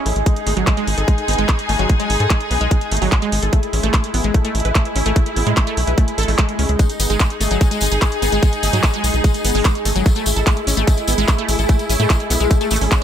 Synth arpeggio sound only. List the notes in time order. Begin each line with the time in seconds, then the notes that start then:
0.06 A3
0.26 G#3
0.47 A3
0.57 F#3
0.67 G#3
0.77 G#3
0.98 A4
1.08 G#3
1.28 B3
1.38 G#3
1.49 G#3
1.69 A3
1.79 F#3
1.90 G#3
2.00 G#3
2.20 A4
2.30 G#3
2.51 B3
2.61 G#3
2.71 G#3
2.92 A3
3.02 F#3
3.12 G#3
3.22 G#3
3.43 A4
3.53 A3
3.73 C#4
3.83 A3
4.14 B3
4.24 G#3
4.34 A3
4.45 A3
4.65 B4
4.75 A3
4.96 C#4
5.06 A3
5.16 A3
5.36 B3
5.47 G#3
5.57 A3
5.67 A3
5.87 B4
5.98 A3
6.18 A4
6.28 A3
6.38 A3
6.59 C#4
6.69 G#3
6.79 G#3
7.00 B3
7.10 G#3
7.20 G#3
7.41 A3
7.51 F#3
7.61 G#3
7.71 G#3
7.92 G#4
8.02 G#3
8.22 B3
8.32 G#3
8.43 G#3
8.63 A3
8.73 F#3
8.83 G#3
8.94 G#3
9.14 G#4
9.24 G#3
9.45 B3
9.55 G#3
9.65 G#3
9.85 A3
9.96 F#3
10.06 A3
10.16 A3
10.36 A4
10.47 A3
10.67 C#4
10.77 A3
10.87 A3
11.08 B3
11.18 G#3
11.28 A3
11.38 A3
11.59 A4
11.69 A3
11.89 C#4
12.00 A3
12.10 A3
12.30 B3
12.40 G#3
12.51 A3
12.61 A3
12.71 A3
12.81 C#4
12.92 C#4